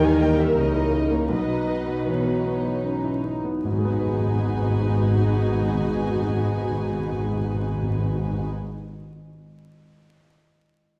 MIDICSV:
0, 0, Header, 1, 10, 480
1, 0, Start_track
1, 0, Key_signature, 5, "minor"
1, 0, Tempo, 717703
1, 870, Time_signature, 3, 2, 24, 8
1, 870, Tempo, 769231
1, 1830, Tempo, 792602
1, 6770, End_track
2, 0, Start_track
2, 0, Title_t, "Violin section"
2, 0, Program_c, 0, 48
2, 27, Note_on_c, 0, 80, 55
2, 139, Note_on_c, 0, 79, 58
2, 142, Note_off_c, 0, 80, 0
2, 258, Note_off_c, 0, 79, 0
2, 259, Note_on_c, 0, 76, 50
2, 377, Note_off_c, 0, 76, 0
2, 386, Note_on_c, 0, 75, 60
2, 748, Note_off_c, 0, 75, 0
2, 758, Note_on_c, 0, 73, 47
2, 875, Note_on_c, 0, 75, 56
2, 876, Note_off_c, 0, 73, 0
2, 1337, Note_off_c, 0, 75, 0
2, 1360, Note_on_c, 0, 73, 39
2, 2068, Note_off_c, 0, 73, 0
2, 2322, Note_on_c, 0, 80, 53
2, 5245, Note_off_c, 0, 80, 0
2, 6770, End_track
3, 0, Start_track
3, 0, Title_t, "Violin"
3, 0, Program_c, 1, 40
3, 29, Note_on_c, 1, 80, 70
3, 145, Note_on_c, 1, 79, 65
3, 155, Note_off_c, 1, 80, 0
3, 269, Note_on_c, 1, 76, 60
3, 279, Note_off_c, 1, 79, 0
3, 390, Note_on_c, 1, 75, 62
3, 400, Note_off_c, 1, 76, 0
3, 757, Note_on_c, 1, 73, 52
3, 767, Note_off_c, 1, 75, 0
3, 876, Note_off_c, 1, 73, 0
3, 884, Note_on_c, 1, 75, 62
3, 1359, Note_on_c, 1, 73, 46
3, 1368, Note_off_c, 1, 75, 0
3, 2081, Note_off_c, 1, 73, 0
3, 2325, Note_on_c, 1, 68, 55
3, 5248, Note_off_c, 1, 68, 0
3, 6770, End_track
4, 0, Start_track
4, 0, Title_t, "Viola section"
4, 0, Program_c, 2, 48
4, 0, Note_on_c, 2, 70, 85
4, 848, Note_off_c, 2, 70, 0
4, 884, Note_on_c, 2, 71, 56
4, 2057, Note_off_c, 2, 71, 0
4, 2331, Note_on_c, 2, 63, 55
4, 2331, Note_on_c, 2, 66, 55
4, 5254, Note_off_c, 2, 63, 0
4, 5254, Note_off_c, 2, 66, 0
4, 6770, End_track
5, 0, Start_track
5, 0, Title_t, "Violin section"
5, 0, Program_c, 3, 48
5, 0, Note_on_c, 3, 63, 62
5, 354, Note_off_c, 3, 63, 0
5, 378, Note_on_c, 3, 63, 47
5, 860, Note_off_c, 3, 63, 0
5, 884, Note_on_c, 3, 63, 40
5, 1342, Note_off_c, 3, 63, 0
5, 1360, Note_on_c, 3, 63, 43
5, 2161, Note_off_c, 3, 63, 0
5, 2326, Note_on_c, 3, 71, 42
5, 5249, Note_off_c, 3, 71, 0
5, 6770, End_track
6, 0, Start_track
6, 0, Title_t, "French horn section"
6, 0, Program_c, 4, 60
6, 0, Note_on_c, 4, 58, 68
6, 0, Note_on_c, 4, 63, 67
6, 353, Note_off_c, 4, 58, 0
6, 354, Note_off_c, 4, 63, 0
6, 384, Note_on_c, 4, 58, 46
6, 386, Note_on_c, 4, 63, 46
6, 864, Note_off_c, 4, 58, 0
6, 865, Note_off_c, 4, 63, 0
6, 870, Note_on_c, 4, 59, 48
6, 874, Note_on_c, 4, 63, 47
6, 1337, Note_off_c, 4, 63, 0
6, 1344, Note_off_c, 4, 59, 0
6, 1352, Note_on_c, 4, 59, 44
6, 1572, Note_off_c, 4, 59, 0
6, 1590, Note_on_c, 4, 59, 37
6, 1831, Note_on_c, 4, 61, 42
6, 1833, Note_off_c, 4, 59, 0
6, 2074, Note_off_c, 4, 61, 0
6, 2074, Note_on_c, 4, 63, 42
6, 2318, Note_off_c, 4, 63, 0
6, 2327, Note_on_c, 4, 59, 49
6, 2329, Note_on_c, 4, 66, 47
6, 5250, Note_off_c, 4, 59, 0
6, 5252, Note_off_c, 4, 66, 0
6, 6770, End_track
7, 0, Start_track
7, 0, Title_t, "Felt piano"
7, 0, Program_c, 5, 0
7, 0, Control_c, 5, 64, 127
7, 0, Note_on_c, 5, 39, 59
7, 0, Note_on_c, 5, 52, 35
7, 0, Note_on_c, 5, 55, 41
7, 0, Note_on_c, 5, 63, 45
7, 30, Note_off_c, 5, 55, 0
7, 30, Note_on_c, 5, 55, 42
7, 137, Note_on_c, 5, 58, 36
7, 213, Note_off_c, 5, 55, 0
7, 248, Note_on_c, 5, 55, 38
7, 327, Note_off_c, 5, 58, 0
7, 351, Note_off_c, 5, 39, 0
7, 371, Note_off_c, 5, 63, 0
7, 371, Note_on_c, 5, 63, 43
7, 444, Note_off_c, 5, 55, 0
7, 496, Note_on_c, 5, 64, 35
7, 568, Note_off_c, 5, 63, 0
7, 619, Note_off_c, 5, 64, 0
7, 625, Note_on_c, 5, 63, 36
7, 742, Note_on_c, 5, 58, 36
7, 822, Note_off_c, 5, 63, 0
7, 862, Note_on_c, 5, 35, 40
7, 869, Note_off_c, 5, 58, 0
7, 883, Control_c, 5, 64, 0
7, 884, Note_off_c, 5, 52, 0
7, 982, Note_on_c, 5, 54, 26
7, 1000, Control_c, 5, 64, 127
7, 1105, Note_on_c, 5, 63, 31
7, 1174, Note_off_c, 5, 54, 0
7, 1223, Note_on_c, 5, 54, 30
7, 1296, Note_off_c, 5, 63, 0
7, 1350, Note_on_c, 5, 52, 24
7, 1415, Note_off_c, 5, 54, 0
7, 1467, Note_off_c, 5, 52, 0
7, 1467, Note_on_c, 5, 54, 31
7, 1592, Note_on_c, 5, 59, 27
7, 1660, Note_off_c, 5, 54, 0
7, 1708, Note_on_c, 5, 54, 29
7, 1785, Note_off_c, 5, 59, 0
7, 1835, Note_on_c, 5, 63, 33
7, 1904, Note_off_c, 5, 54, 0
7, 1952, Note_on_c, 5, 64, 26
7, 2027, Note_off_c, 5, 63, 0
7, 2074, Note_off_c, 5, 64, 0
7, 2074, Note_on_c, 5, 63, 30
7, 2195, Note_on_c, 5, 59, 30
7, 2270, Note_off_c, 5, 63, 0
7, 2290, Note_off_c, 5, 35, 0
7, 2316, Note_on_c, 5, 44, 37
7, 2317, Note_off_c, 5, 59, 0
7, 2333, Control_c, 5, 64, 0
7, 2357, Note_on_c, 5, 54, 37
7, 2403, Note_on_c, 5, 56, 40
7, 2441, Note_on_c, 5, 59, 39
7, 2444, Control_c, 5, 64, 127
7, 2484, Note_on_c, 5, 63, 37
7, 2529, Note_on_c, 5, 71, 40
7, 5205, Control_c, 5, 64, 0
7, 5239, Note_off_c, 5, 44, 0
7, 5280, Note_off_c, 5, 54, 0
7, 5326, Note_off_c, 5, 56, 0
7, 5364, Note_off_c, 5, 59, 0
7, 5407, Note_off_c, 5, 63, 0
7, 5452, Note_off_c, 5, 71, 0
7, 6770, End_track
8, 0, Start_track
8, 0, Title_t, "Cello section"
8, 0, Program_c, 6, 48
8, 0, Note_on_c, 6, 51, 66
8, 350, Note_off_c, 6, 51, 0
8, 384, Note_on_c, 6, 49, 43
8, 864, Note_off_c, 6, 49, 0
8, 878, Note_on_c, 6, 47, 42
8, 2173, Note_off_c, 6, 47, 0
8, 2316, Note_on_c, 6, 44, 48
8, 5239, Note_off_c, 6, 44, 0
8, 6770, End_track
9, 0, Start_track
9, 0, Title_t, "Timpani"
9, 0, Program_c, 7, 47
9, 2316, Note_on_c, 7, 44, 53
9, 2358, Note_off_c, 7, 44, 0
9, 2358, Note_on_c, 7, 44, 47
9, 2399, Note_off_c, 7, 44, 0
9, 2399, Note_on_c, 7, 44, 59
9, 2442, Note_off_c, 7, 44, 0
9, 2442, Note_on_c, 7, 44, 50
9, 2484, Note_off_c, 7, 44, 0
9, 2485, Note_on_c, 7, 44, 50
9, 2525, Note_off_c, 7, 44, 0
9, 2525, Note_on_c, 7, 44, 50
9, 2567, Note_off_c, 7, 44, 0
9, 2569, Note_on_c, 7, 44, 53
9, 2609, Note_off_c, 7, 44, 0
9, 2609, Note_on_c, 7, 44, 48
9, 2650, Note_off_c, 7, 44, 0
9, 2650, Note_on_c, 7, 44, 51
9, 2693, Note_off_c, 7, 44, 0
9, 2695, Note_on_c, 7, 44, 48
9, 2735, Note_off_c, 7, 44, 0
9, 2735, Note_on_c, 7, 44, 55
9, 2778, Note_off_c, 7, 44, 0
9, 2780, Note_on_c, 7, 44, 51
9, 2823, Note_off_c, 7, 44, 0
9, 2825, Note_on_c, 7, 44, 57
9, 2867, Note_off_c, 7, 44, 0
9, 2867, Note_on_c, 7, 44, 49
9, 2906, Note_off_c, 7, 44, 0
9, 2906, Note_on_c, 7, 44, 52
9, 2945, Note_off_c, 7, 44, 0
9, 2945, Note_on_c, 7, 44, 51
9, 2988, Note_off_c, 7, 44, 0
9, 2989, Note_on_c, 7, 44, 51
9, 3031, Note_off_c, 7, 44, 0
9, 3032, Note_on_c, 7, 44, 49
9, 3074, Note_off_c, 7, 44, 0
9, 3074, Note_on_c, 7, 44, 51
9, 3115, Note_off_c, 7, 44, 0
9, 3115, Note_on_c, 7, 44, 47
9, 3156, Note_off_c, 7, 44, 0
9, 3156, Note_on_c, 7, 44, 63
9, 3199, Note_off_c, 7, 44, 0
9, 3202, Note_on_c, 7, 44, 50
9, 3243, Note_off_c, 7, 44, 0
9, 3243, Note_on_c, 7, 44, 57
9, 3286, Note_off_c, 7, 44, 0
9, 3288, Note_on_c, 7, 44, 49
9, 3331, Note_off_c, 7, 44, 0
9, 3336, Note_on_c, 7, 44, 54
9, 3377, Note_off_c, 7, 44, 0
9, 3377, Note_on_c, 7, 44, 48
9, 3419, Note_off_c, 7, 44, 0
9, 3420, Note_on_c, 7, 44, 48
9, 3462, Note_off_c, 7, 44, 0
9, 3463, Note_on_c, 7, 44, 48
9, 3506, Note_off_c, 7, 44, 0
9, 3506, Note_on_c, 7, 44, 53
9, 3548, Note_off_c, 7, 44, 0
9, 3548, Note_on_c, 7, 44, 53
9, 3590, Note_off_c, 7, 44, 0
9, 3591, Note_on_c, 7, 44, 55
9, 3630, Note_off_c, 7, 44, 0
9, 3630, Note_on_c, 7, 44, 52
9, 3670, Note_off_c, 7, 44, 0
9, 3670, Note_on_c, 7, 44, 56
9, 3712, Note_off_c, 7, 44, 0
9, 3713, Note_on_c, 7, 44, 51
9, 3753, Note_off_c, 7, 44, 0
9, 3753, Note_on_c, 7, 44, 54
9, 3794, Note_off_c, 7, 44, 0
9, 3794, Note_on_c, 7, 44, 44
9, 3837, Note_off_c, 7, 44, 0
9, 3837, Note_on_c, 7, 44, 53
9, 3878, Note_off_c, 7, 44, 0
9, 3878, Note_on_c, 7, 44, 53
9, 3920, Note_off_c, 7, 44, 0
9, 3920, Note_on_c, 7, 44, 52
9, 3963, Note_off_c, 7, 44, 0
9, 3965, Note_on_c, 7, 44, 50
9, 4005, Note_off_c, 7, 44, 0
9, 4005, Note_on_c, 7, 44, 51
9, 4048, Note_off_c, 7, 44, 0
9, 4050, Note_on_c, 7, 44, 49
9, 4089, Note_off_c, 7, 44, 0
9, 4089, Note_on_c, 7, 44, 51
9, 4130, Note_off_c, 7, 44, 0
9, 4130, Note_on_c, 7, 44, 52
9, 4173, Note_off_c, 7, 44, 0
9, 4174, Note_on_c, 7, 44, 57
9, 4213, Note_off_c, 7, 44, 0
9, 4213, Note_on_c, 7, 44, 47
9, 4254, Note_off_c, 7, 44, 0
9, 4254, Note_on_c, 7, 44, 55
9, 4297, Note_off_c, 7, 44, 0
9, 4298, Note_on_c, 7, 44, 50
9, 4340, Note_off_c, 7, 44, 0
9, 4341, Note_on_c, 7, 44, 49
9, 4383, Note_off_c, 7, 44, 0
9, 4384, Note_on_c, 7, 44, 49
9, 4425, Note_off_c, 7, 44, 0
9, 4425, Note_on_c, 7, 44, 52
9, 4465, Note_off_c, 7, 44, 0
9, 4465, Note_on_c, 7, 44, 51
9, 4508, Note_off_c, 7, 44, 0
9, 4510, Note_on_c, 7, 44, 57
9, 4550, Note_off_c, 7, 44, 0
9, 4550, Note_on_c, 7, 44, 45
9, 4592, Note_off_c, 7, 44, 0
9, 4593, Note_on_c, 7, 44, 50
9, 4636, Note_off_c, 7, 44, 0
9, 4638, Note_on_c, 7, 44, 47
9, 4680, Note_off_c, 7, 44, 0
9, 4680, Note_on_c, 7, 44, 49
9, 4723, Note_off_c, 7, 44, 0
9, 4723, Note_on_c, 7, 44, 50
9, 4765, Note_off_c, 7, 44, 0
9, 4766, Note_on_c, 7, 44, 53
9, 4805, Note_off_c, 7, 44, 0
9, 4805, Note_on_c, 7, 44, 50
9, 4848, Note_off_c, 7, 44, 0
9, 4848, Note_on_c, 7, 44, 55
9, 4891, Note_off_c, 7, 44, 0
9, 4895, Note_on_c, 7, 44, 48
9, 4933, Note_off_c, 7, 44, 0
9, 4933, Note_on_c, 7, 44, 55
9, 4976, Note_off_c, 7, 44, 0
9, 4976, Note_on_c, 7, 44, 48
9, 5018, Note_off_c, 7, 44, 0
9, 5019, Note_on_c, 7, 44, 57
9, 5061, Note_off_c, 7, 44, 0
9, 5061, Note_on_c, 7, 44, 46
9, 5104, Note_off_c, 7, 44, 0
9, 5105, Note_on_c, 7, 44, 52
9, 5147, Note_off_c, 7, 44, 0
9, 5151, Note_on_c, 7, 44, 48
9, 5194, Note_off_c, 7, 44, 0
9, 5194, Note_on_c, 7, 44, 50
9, 5236, Note_off_c, 7, 44, 0
9, 6770, End_track
10, 0, Start_track
10, 0, Title_t, "Double bass section"
10, 0, Program_c, 8, 48
10, 0, Note_on_c, 8, 39, 65
10, 354, Note_off_c, 8, 39, 0
10, 380, Note_on_c, 8, 37, 46
10, 862, Note_off_c, 8, 37, 0
10, 875, Note_on_c, 8, 35, 45
10, 2171, Note_off_c, 8, 35, 0
10, 2315, Note_on_c, 8, 32, 47
10, 5238, Note_off_c, 8, 32, 0
10, 6770, End_track
0, 0, End_of_file